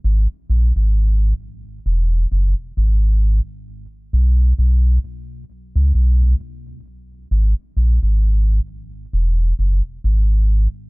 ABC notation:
X:1
M:4/4
L:1/16
Q:"Swing 16ths" 1/4=66
K:G#m
V:1 name="Sub bass" clef=bass
G,,, z A,,, G,,,3 z2 E,,,2 F,,, z G,,,3 z | z2 B,,,2 B,,,2 z3 C,, B,,,2 z4 | G,,, z A,,, G,,,3 z2 E,,,2 F,,, z G,,,3 z |]